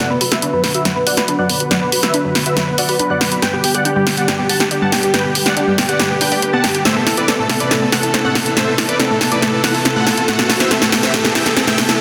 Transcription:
0.00 riser
0.10 B3 B4 B5
0.21 F#4 B4 B5, open hi-hat
0.32 F#4 B4 E5 E6, snare, closed hi-hat
0.42 D4 B4 B5, closed hi-hat
0.53 F#3 B4 B5
0.64 B3 B4 B5, snare, open hi-hat
0.74 F#4 B4 E5 E6, closed hi-hat
0.85 F#3 B4 B5, snare, closed hi-hat
0.96 B3 B4 B5
1.07 F#4 D5 F#5 F#6, open hi-hat
1.17 F#4 B4 B5, snare, closed hi-hat
1.28 D4 B4 B5, closed hi-hat
1.39 F#3 D5 F#5 F#6
1.49 B3 B4 B5, open hi-hat
1.60 F#4 B4 B5, closed hi-hat
1.71 F#3 D5 F#5 F#6, snare, closed hi-hat
1.82 B3 B4 B5
1.92 F#4 B4 B5, open hi-hat
2.03 F#4 B4 E5 E6, snare, closed hi-hat
2.14 D4 B4 B5, closed hi-hat
2.24 F#3 B4 B5
2.35 B3 B4 B5, snare, open hi-hat
2.46 F#4 B4 E5 E6, closed hi-hat
2.57 F#3 B4 B5, snare, closed hi-hat
2.67 B3 B4 B5
2.78 F#4 D5 F#5 F#6, open hi-hat
2.89 F#4 B4 B5, open hi-hat
2.99 D4 B4 B5, closed hi-hat
3.10 F#3 D5 F#5 F#6
3.21 B3 B4 B5, snare, open hi-hat
3.32 F#4 B4 B5, closed hi-hat
3.42 G3 B4 G5 G6, snare, closed hi-hat
3.53 B3 G4 G5
3.64 G4 G5, open hi-hat
3.74 G4 D5 F#5 F#6, closed hi-hat
3.85 D4 G4 G5, closed hi-hat
3.96 G3 G4 G5
4.07 B3 G4 G5, snare, open hi-hat
4.17 G4 D5 F#5 F#6, closed hi-hat
4.28 G3 G4 G5, snare, closed hi-hat
4.39 B3 G4 G5
4.49 G4 F#5 A5 A6, open hi-hat
4.60 G4 G5, snare, closed hi-hat
4.71 D4 G4 G5, closed hi-hat
4.82 G3 F#5 A5 A6
4.92 B3 G4 G5, snare, open hi-hat
5.03 G4 G5, closed hi-hat
5.14 G3 B4 G5 G6, snare, closed hi-hat
5.24 B3 G4 G5
5.35 G4 G5, open hi-hat
5.46 G4 D5 F#5 F#6, snare, closed hi-hat
5.57 D4 G4 G5, closed hi-hat
5.67 G3 G4 G5
5.78 B3 G4 G5, snare, open hi-hat
5.89 G4 D5 F#5 F#6, closed hi-hat
5.99 G3 G4 G5, snare, closed hi-hat
6.10 B3 G4 G5
6.21 D4 B4 G5 G6, open hi-hat
6.32 G4 D5 G5, open hi-hat
6.42 G4 B4 G5, closed hi-hat
6.53 B3 F#5 A5 A6
6.64 G3 G4 G5, snare, open hi-hat
6.75 G4 G5, closed hi-hat
6.85 A3 C5 E5 E6, snare, closed hi-hat
6.96 B3 A4 A5
7.07 E4 A4 A5, snare, open hi-hat
7.17 E4 B4 D5 D6, closed hi-hat
7.28 C4 A4 A5, snare, closed hi-hat
7.39 A3 A4 A5
7.49 B3 A4 A5, snare, open hi-hat
7.60 E4 B4 D5 D6, closed hi-hat
7.71 A3 A4 A5, snare, closed hi-hat
7.82 B3 A4 A5
7.92 E4 A4 F#5 F#6, snare, open hi-hat
8.03 E4 A4 A5, closed hi-hat
8.14 C4 A4 A5, snare, closed hi-hat
8.24 A3 A4 F#5 F#6
8.35 B3 A4 A5, snare, open hi-hat
8.46 E4 A4 A5, closed hi-hat
8.57 A3 C5 E5 E6, snare, closed hi-hat
8.67 B3 A4 A5
8.78 E4 A4 A5, snare, open hi-hat
8.89 E4 B4 D5 D6, closed hi-hat
9.00 C4 A4 A5, snare, closed hi-hat
9.10 A3 A4 A5
9.21 B3 A4 A5, snare, open hi-hat
9.32 E4 B4 D5 D6, closed hi-hat
9.42 A3 A4 A5, snare, closed hi-hat
9.53 B3 A4 A5
9.64 E4 A4 F#5 F#6, snare, open hi-hat
9.75 E4 A4 A5, open hi-hat
9.85 C4 A4 A5, snare, closed hi-hat
9.96 A3 A4 F#5 F#6
10.07 B3 A4 A5, snare, open hi-hat
10.17 E4 A4 A5, closed hi-hat
10.28 A3 A4 F#5 F#6, snare, closed hi-hat
10.39 B3 A4 A5, snare
10.50 E4 A4 A5, snare, open hi-hat
10.60 E4 C5 E5 E6, snare, closed hi-hat
10.71 C4 A4 A5, snare, closed hi-hat
10.82 A3 A4 A5, snare
10.92 B3 A4 A5, snare, open hi-hat
11.03 E4 C5 E5 E6, snare, closed hi-hat
11.14 A3 A4 A5, snare, closed hi-hat
11.25 B3 A4 A5, snare
11.35 E4 E5 G5 G6, snare, open hi-hat
11.46 E4 A4 A5, snare, closed hi-hat
11.57 C4 A4 A5, snare, closed hi-hat
11.67 A3 E5 G5 G6, snare
11.78 B3 A4 A5, snare, open hi-hat
11.89 E4 A4 A5, snare, closed hi-hat

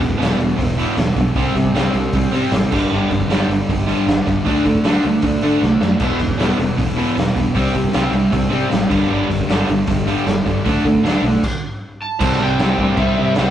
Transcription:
0.00 E1 E2 B2 E3, kick, open hi-hat
0.11 kick
0.20 E1 E2 B2 E3, snare, open hi-hat
0.39 E1 E2 B2 E3, open hi-hat
0.59 E1 E2 B2 E3, kick, open hi-hat
0.78 E2 B2 E3, open hi-hat
0.97 E1 E2 B2 E3, snare, open hi-hat
1.16 B1 E2 B2 E3, kick, open hi-hat
1.35 C2 C3 G3 C4, kick, open hi-hat
1.55 C3 G3 C4, kick, open hi-hat
1.65 kick
1.74 C2 C3 G3 C4, snare, open hi-hat
1.94 C2 C3 G3 C4, open hi-hat
2.13 C2 C3 G3 C4, kick, open hi-hat
2.32 C3 G3 C4, open hi-hat
2.51 A1 C3 G3 C4, snare, open hi-hat
2.72 G1 G2 D3 G3, kick, crash
2.92 G1 G2 D3 G3
3.11 G1 G2 D3 G3, kick, open hi-hat
3.20 kick
3.28 G1, snare, open hi-hat
3.32 G2 D3 G3
3.48 G1 G2, open hi-hat
3.52 D3 G3
3.69 G1 G2 D3 G3, kick, open hi-hat
3.89 G2 D3 G3, open hi-hat
4.06 G1 G2 D3 G3, snare, open hi-hat
4.27 G1 G2 D3 G3, kick, open hi-hat
4.46 D2 D3 A3 D4, kick, open hi-hat
4.65 D3 A3 D4, kick, open hi-hat
4.75 kick
4.84 D2 D3 A3 D4, snare, open hi-hat
5.03 D2 D3 A3, open hi-hat
5.07 D4
5.22 D2 D3, kick, open hi-hat
5.26 A3 D4
5.41 D3 A3 D4, open hi-hat
5.62 C2 D3 A3 D4, snare
5.81 F#2 D3 A3 D4, snare
6.00 E1 E2 B2 E3, kick, crash
6.19 E1 E2 B2 E3, kick, open hi-hat
6.29 kick
6.39 E1 E2 B2 E3, snare, open hi-hat
6.59 E1 E2 B2 E3, open hi-hat
6.78 E1 E2 B2 E3, kick, open hi-hat
6.99 E2 B2 E3, open hi-hat
7.17 E1 E2 B2 E3, snare, open hi-hat
7.36 E1 E2 B2 E3, kick, open hi-hat
7.55 C2 C3 G3 C4, kick, open hi-hat
7.74 C3 G3 C4, kick, open hi-hat
7.84 kick
7.93 C2 C3 G3 C4, snare, open hi-hat
8.13 C2 C3 G3 C4, open hi-hat
8.31 C2 C3 G3, kick, open hi-hat
8.35 C3 G3 C4
8.49 C3, open hi-hat
8.54 C3 G3 C4
8.72 A1 C3 G3 C4, snare, open hi-hat
8.91 G1 G2 D3 G3, kick, crash
9.07 G1 G2
9.11 G2 D3 G3
9.30 G1 G2 D3 G3, kick, open hi-hat
9.39 kick
9.49 G1 G2 D3 G3, snare, open hi-hat
9.67 G1 G2 D3, open hi-hat
9.71 G2 G3
9.87 G1 G2 D3, kick, open hi-hat
9.91 G3
10.06 G2 D3 G3, open hi-hat
10.10 G2 D3 G3
10.27 G1 G2 D3 G3, snare, open hi-hat
10.46 G1 G2 D3 G3, kick, open hi-hat
10.65 D2 D3 A3 D4, kick, open hi-hat
10.85 D3 A3 D4, kick, open hi-hat
10.95 kick
11.04 D2 D3 A3 D4, snare, open hi-hat
11.22 B1 D3 A3, open hi-hat
11.27 D4
11.43 kick, crash
12.02 A5
12.20 C2 C3 G3 C4, kick, crash
12.40 C2 C3 G3 C4 G5
12.59 C2 C3 G3 C4, snare, crash
12.78 A1 C3 C4, kick
12.82 C3 G3
12.97 C2 C3 G3 C4 E5, kick, crash
13.18 C2 C3 G3 C4
13.35 C2 C3 G3 C4 F#5, snare, crash

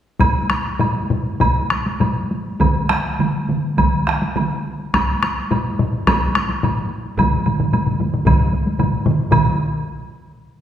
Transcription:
0.20 taiko, taiko low-mid, taiko high, high woodblock
0.35 taiko high
0.50 taiko rim, taiko high, high woodblock
0.66 taiko high
0.79 taiko low-mid, taiko high, high woodblock
0.96 taiko high
1.10 taiko low-mid, taiko high
1.26 taiko high
1.40 taiko, taiko low-mid, taiko high, high woodblock
1.56 taiko high
1.70 taiko rim, taiko high
1.86 taiko high
2.00 taiko low-mid, taiko high, high woodblock
2.16 taiko high
2.31 taiko high
2.46 taiko high
2.60 taiko, taiko mid, taiko high, high woodblock
2.76 taiko high
2.89 taiko rim, taiko high, high woodblock
3.05 taiko high
3.19 taiko mid, taiko high, high woodblock
3.34 taiko high
3.49 taiko mid, taiko high
3.64 taiko high
3.78 taiko, taiko mid, taiko high, high woodblock
4.07 taiko rim, taiko high
4.22 taiko high
4.36 taiko mid, taiko high, high woodblock
4.51 taiko high
4.80 taiko high
4.94 taiko rim, taiko, taiko high, high woodblock
5.08 taiko high
5.23 taiko rim, taiko high, high woodblock
5.37 taiko high
5.51 taiko low-mid, taiko high, high woodblock
5.65 taiko high
5.79 taiko low-mid, taiko high
5.93 taiko high
6.07 taiko rim, taiko, taiko high, high woodblock
6.22 taiko high
6.35 taiko rim, taiko high
6.50 taiko high
6.63 taiko low-mid, taiko high, high woodblock
6.78 taiko high
7.06 taiko high
7.18 taiko, taiko low-mid, taiko mid, taiko high, high woodblock
7.32 taiko low-mid, taiko mid, taiko high
7.46 taiko low-mid, taiko mid, taiko high, high woodblock
7.59 taiko low-mid, taiko mid
7.73 taiko low-mid, taiko mid, taiko high, high woodblock
7.86 taiko low-mid, taiko mid, taiko high
8.00 taiko low-mid, taiko mid, taiko high
8.13 taiko low-mid, taiko mid, taiko high
8.26 taiko, taiko low-mid, taiko mid, taiko high, high woodblock
8.40 taiko high
8.53 taiko high
8.66 taiko high
8.79 taiko low-mid, taiko mid, taiko high, high woodblock
8.93 taiko high
9.05 taiko low-mid, taiko mid, taiko high
9.19 taiko high
9.31 taiko, taiko low-mid, taiko mid, taiko high, high woodblock

